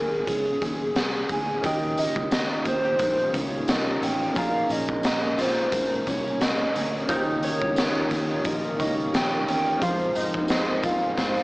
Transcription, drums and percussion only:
0.27 kick medium
0.27 closed hi-hat medium
0.62 kick medium
0.62 closed hi-hat medium
0.96 snare loud
0.96 closed hi-hat medium
1.29 kick medium
1.29 closed hi-hat medium
1.63 kick loud
1.63 closed hi-hat loud
1.63 tambourine medium
1.97 closed hi-hat medium
1.97 tambourine soft
2.16 kick medium
2.16 tambourine soft
2.31 snare loud
2.31 closed hi-hat medium
2.31 tambourine medium
2.65 kick loud
2.65 closed hi-hat medium
2.65 tambourine soft
2.99 kick loud
2.99 closed hi-hat loud
2.99 tambourine medium
3.19 tambourine soft
3.34 kick medium
3.34 closed hi-hat medium
3.34 tambourine soft
3.68 snare loud
3.68 closed hi-hat medium
3.68 tambourine medium
4.02 closed hi-hat medium
4.02 tambourine medium
4.35 kick loud
4.35 closed hi-hat medium
4.35 tambourine medium
4.69 closed hi-hat medium
4.69 tambourine soft
4.89 kick medium
5.03 snare loud
5.03 closed hi-hat medium
5.03 tambourine medium
5.38 snare soft
5.38 closed hi-hat medium
5.38 tambourine soft
5.58 tambourine soft
5.72 kick loud
5.72 closed hi-hat loud
5.72 tambourine soft
6.07 kick medium
6.07 closed hi-hat medium
6.07 tambourine soft
6.28 tambourine soft
6.41 snare loud
6.41 closed hi-hat medium
6.41 tambourine medium
6.75 closed hi-hat medium
6.75 tambourine medium
7.09 kick loud
7.09 closed hi-hat medium
7.09 tambourine medium
7.43 closed hi-hat medium
7.43 tambourine soft
7.62 kick medium
7.76 snare loud
7.76 closed hi-hat medium
7.76 tambourine medium
8.10 kick medium
8.10 snare soft
8.10 closed hi-hat medium
8.10 tambourine soft
8.45 kick loud
8.45 closed hi-hat loud
8.45 tambourine medium
8.64 tambourine soft
8.80 kick medium
8.80 closed hi-hat medium
8.80 tambourine soft
9.00 tambourine soft
9.14 snare loud
9.14 closed hi-hat medium
9.14 tambourine medium
9.48 closed hi-hat medium
9.48 tambourine medium
9.82 kick loud
9.82 closed hi-hat loud
9.82 tambourine soft
10.15 closed hi-hat medium
10.15 tambourine soft
10.34 kick medium
10.34 tambourine soft
10.48 snare loud
10.48 closed hi-hat medium
10.48 tambourine medium
10.83 kick loud
10.83 closed hi-hat medium
10.83 tambourine soft
11.17 kick loud
11.17 snare medium
11.17 tambourine medium
11.36 tambourine soft

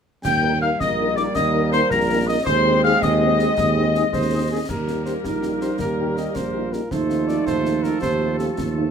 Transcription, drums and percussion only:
0.25 concert bass drum medium
0.25 snare medium
0.25 crash medium
0.81 concert bass drum medium
0.81 snare medium
1.17 snare soft
1.36 concert bass drum medium
1.36 snare medium
1.73 snare medium
1.91 concert bass drum medium
1.91 snare medium
2.46 concert bass drum medium
2.46 snare medium
3.02 concert bass drum medium
3.02 snare medium
3.39 snare medium
3.58 concert bass drum medium
3.58 snare medium
3.95 snare medium
4.13 concert bass drum medium
4.13 snare medium
4.69 concert bass drum medium
4.69 snare medium
4.69 crash soft
4.88 snare soft
5.06 snare soft
5.25 concert bass drum medium
5.25 snare medium
5.43 snare soft
5.61 snare soft
5.79 concert bass drum medium
5.79 snare medium
6.17 snare soft
6.36 concert bass drum medium
6.36 snare medium
6.73 snare soft
6.91 concert bass drum medium
6.91 snare medium
7.10 snare medium
7.29 snare soft
7.47 concert bass drum medium
7.47 snare medium
7.66 snare soft
7.84 snare soft
8.02 concert bass drum medium
8.02 snare medium
8.39 snare medium
8.58 concert bass drum medium
8.58 snare medium

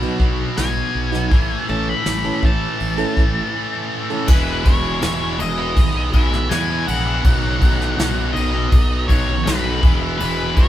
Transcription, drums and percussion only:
0.20 kick medium
0.57 snare loud
0.57 open hi-hat medium
1.14 snare soft
1.31 kick loud
1.31 open hi-hat medium
2.06 snare loud
2.06 open hi-hat medium
2.43 kick medium
2.80 open hi-hat medium
3.17 kick medium
4.28 kick loud
4.28 crash loud
4.28 crash medium
4.65 kick medium
4.65 crash medium
5.02 snare loud
5.02 crash medium
5.40 crash medium
5.77 kick loud
5.77 crash medium
6.13 kick medium
6.13 crash medium
6.33 snare soft
6.51 snare loud
6.51 crash medium
6.88 crash medium
7.25 kick loud
7.25 crash medium
7.62 kick loud
7.62 crash medium
7.81 snare soft
7.99 snare loud
7.99 crash medium
8.36 crash medium
8.72 kick loud
8.72 crash medium
9.09 kick medium
9.09 crash medium
9.47 snare loud
9.47 crash loud
9.83 kick loud
9.83 crash medium
10.20 crash medium
10.57 kick medium
10.57 crash medium

